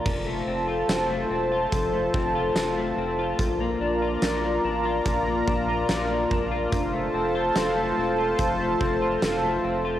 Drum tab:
CC |x-------|--------|--------|
HH |--x-x-x-|x-x-x-x-|x-x-x-x-|
TB |--x---x-|--x---x-|--x---x-|
SD |--o---o-|--o---o-|--o---o-|
BD |o---oo--|o---oo-o|o---oo--|